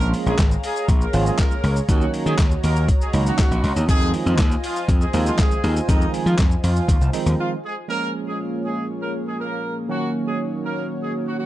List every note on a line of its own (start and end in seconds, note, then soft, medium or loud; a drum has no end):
0.00 0.12 A#1 loud
0.00 0.42 F3 medium
0.00 0.42 G#3 medium
0.00 0.10 A#3 medium
0.00 0.42 A#3 medium
0.00 0.42 C#4 medium
0.00 0.42 F4 medium
0.00 1.87 G#4 medium
0.00 0.10 A#4 loud
0.00 3.85 C#5 medium
0.00 1.87 F5 medium
0.00 1.87 A#5 medium
0.00 shaker medium
0.14 open hi-hat medium
0.14 shaker soft
0.26 0.34 A#1 medium
0.26 0.37 G#3 medium
0.26 0.37 G#4 medium
0.26 shaker medium
0.39 0.54 G#1 loud
0.39 kick loud
0.39 snare medium
0.39 clap loud
0.39 clap medium
0.39 closed hi-hat medium
0.39 shaker medium
0.51 shaker medium
0.64 0.86 G#3 medium
0.64 0.85 G#4 medium
0.64 open hi-hat medium
0.64 shaker medium
0.76 shaker medium
0.88 1.04 A#1 loud
0.88 kick loud
0.88 closed hi-hat medium
0.88 shaker medium
1.01 1.12 A#3 medium
1.01 1.12 A#4 medium
1.01 shaker medium
1.13 1.29 G#1 medium
1.13 1.54 F3 medium
1.13 1.54 G#3 medium
1.13 1.54 A#3 medium
1.13 1.54 C#4 medium
1.13 1.54 F4 medium
1.13 open hi-hat medium
1.13 shaker medium
1.26 1.37 G#3 medium
1.26 1.37 G#4 medium
1.26 shaker medium
1.39 1.74 A#3 medium
1.39 1.74 A#4 medium
1.39 kick loud
1.39 snare medium
1.39 clap medium
1.39 clap loud
1.39 closed hi-hat medium
1.39 shaker medium
1.51 shaker medium
1.64 1.79 C#2 loud
1.64 open hi-hat medium
1.64 shaker soft
1.76 shaker medium
1.88 2.04 D#2 loud
1.88 2.42 D#3 medium
1.88 2.42 F#3 medium
1.88 2.11 F#3 medium
1.88 2.42 A#3 medium
1.88 2.42 C#4 medium
1.88 2.42 D#4 medium
1.88 2.10 F#4 medium
1.88 3.87 F#4 medium
1.88 7.85 D#5 medium
1.88 3.87 A#5 loud
1.88 kick loud
1.88 closed hi-hat medium
1.88 shaker medium
2.01 shaker medium
2.14 open hi-hat medium
2.14 shaker medium
2.26 2.34 D#3 loud
2.26 2.37 G#3 medium
2.26 2.37 G#4 medium
2.26 shaker medium
2.38 2.54 D#2 loud
2.38 kick loud
2.38 snare loud
2.38 clap loud
2.38 clap medium
2.38 closed hi-hat medium
2.38 shaker medium
2.51 shaker medium
2.64 2.87 D#2 medium
2.64 2.85 A#3 medium
2.64 2.85 A#4 medium
2.64 open hi-hat medium
2.64 shaker medium
2.76 shaker medium
2.88 kick loud
2.88 closed hi-hat medium
2.88 shaker medium
3.01 3.12 G#3 medium
3.01 3.12 G#4 medium
3.01 shaker medium
3.13 3.29 C#2 loud
3.13 3.54 D#3 medium
3.13 3.54 F#3 medium
3.13 3.54 A#3 medium
3.13 3.54 C#4 medium
3.13 3.54 D#4 medium
3.13 open hi-hat medium
3.13 shaker medium
3.26 3.37 F#3 medium
3.26 3.37 F#4 medium
3.26 shaker medium
3.38 3.74 F#3 medium
3.38 3.74 F#4 medium
3.38 kick loud
3.38 snare medium
3.38 clap medium
3.38 clap loud
3.38 closed hi-hat medium
3.38 shaker medium
3.51 3.59 A#1 loud
3.51 shaker medium
3.64 3.71 C#2 loud
3.64 open hi-hat medium
3.64 shaker soft
3.76 3.84 D#2 loud
3.76 shaker medium
3.89 4.12 F2 loud
3.89 4.42 D#3 medium
3.89 4.42 F3 medium
3.89 4.42 G#3 medium
3.89 4.10 G#3 medium
3.89 4.42 C4 medium
3.89 4.42 D#4 medium
3.89 7.85 F4 medium
3.89 4.10 G#4 loud
3.89 7.85 C5 medium
3.89 7.85 G#5 medium
3.89 kick loud
3.89 closed hi-hat medium
3.89 shaker medium
4.01 shaker medium
4.14 open hi-hat medium
4.14 shaker soft
4.26 4.34 F2 medium
4.26 4.37 F3 medium
4.26 4.37 F4 medium
4.26 shaker medium
4.38 4.54 D#2 loud
4.38 kick loud
4.38 snare loud
4.38 clap loud
4.38 clap medium
4.38 closed hi-hat medium
4.38 shaker medium
4.51 shaker medium
4.64 4.85 F3 medium
4.64 4.85 F4 medium
4.64 open hi-hat medium
4.64 shaker medium
4.76 shaker medium
4.88 5.04 F2 loud
4.88 kick loud
4.88 closed hi-hat medium
4.88 shaker medium
5.01 5.12 G#3 medium
5.01 5.12 G#4 medium
5.01 shaker medium
5.13 5.29 D#2 loud
5.13 5.54 D#3 medium
5.13 5.54 F3 medium
5.13 5.54 G#3 medium
5.13 5.54 C4 medium
5.13 5.54 F4 medium
5.13 open hi-hat medium
5.13 shaker medium
5.26 5.37 F3 medium
5.26 5.37 F4 medium
5.26 shaker medium
5.39 5.74 G#3 medium
5.39 5.74 G#4 medium
5.39 kick loud
5.39 snare loud
5.39 clap medium
5.39 clap loud
5.39 closed hi-hat medium
5.39 shaker medium
5.51 shaker medium
5.64 5.79 D#2 loud
5.64 open hi-hat medium
5.64 shaker soft
5.76 shaker medium
5.88 6.04 F2 loud
5.88 6.42 D#3 medium
5.88 6.42 F3 medium
5.88 6.42 G#3 medium
5.88 6.42 C4 medium
5.88 6.10 D#4 loud
5.88 6.42 D#4 medium
5.88 6.10 D#5 medium
5.88 kick loud
5.88 closed hi-hat medium
5.88 shaker medium
6.01 shaker medium
6.14 open hi-hat medium
6.14 shaker soft
6.26 6.34 F3 loud
6.26 6.37 F3 medium
6.26 6.37 F4 medium
6.26 shaker medium
6.38 6.54 F2 loud
6.38 kick loud
6.38 snare loud
6.38 clap loud
6.38 clap medium
6.38 closed hi-hat medium
6.38 shaker medium
6.51 shaker medium
6.64 6.79 F2 loud
6.64 7.11 F3 medium
6.64 7.11 F4 medium
6.64 open hi-hat medium
6.64 shaker medium
6.76 shaker medium
6.88 6.96 D#2 loud
6.88 kick loud
6.88 closed hi-hat medium
6.88 shaker medium
7.01 7.09 C2 medium
7.01 shaker medium
7.13 7.54 D#3 medium
7.13 7.54 F3 medium
7.13 7.54 G#3 medium
7.13 7.54 C4 medium
7.13 7.54 D#4 medium
7.13 open hi-hat medium
7.13 shaker medium
7.26 7.34 D#2 medium
7.26 shaker medium
7.39 7.50 F3 medium
7.39 7.49 F4 medium
7.64 7.75 G#3 medium
7.64 7.74 G#4 medium
7.88 9.84 F3 medium
7.88 9.85 G#3 medium
7.88 9.85 A#3 medium
7.88 11.46 A#3 medium
7.88 8.11 A#3 medium
7.88 9.85 C#4 medium
7.88 9.87 F4 medium
7.88 9.87 G#4 medium
7.88 8.10 A#4 loud
7.88 9.87 C#5 medium
8.26 8.37 G#3 medium
8.26 8.37 G#4 medium
8.64 8.86 G#3 medium
8.64 8.85 G#4 medium
9.01 9.12 A#3 medium
9.01 9.12 A#4 medium
9.26 9.37 G#3 medium
9.26 9.37 G#4 medium
9.39 9.74 A#3 medium
9.39 9.74 A#4 medium
9.88 11.46 D#3 medium
9.88 11.46 F#3 medium
9.88 10.11 F#3 medium
9.88 11.46 A#3 medium
9.88 11.46 C#4 medium
9.88 11.46 D#4 medium
9.88 11.46 F#4 medium
9.88 10.10 F#4 medium
9.88 11.46 C#5 medium
10.26 10.37 G#3 medium
10.26 10.37 G#4 medium
10.64 10.86 A#3 medium
10.64 10.85 A#4 medium
11.01 11.12 G#3 medium
11.01 11.12 G#4 medium
11.26 11.37 F#3 medium
11.26 11.37 F#4 medium
11.39 11.46 F#3 medium
11.39 11.46 F#4 medium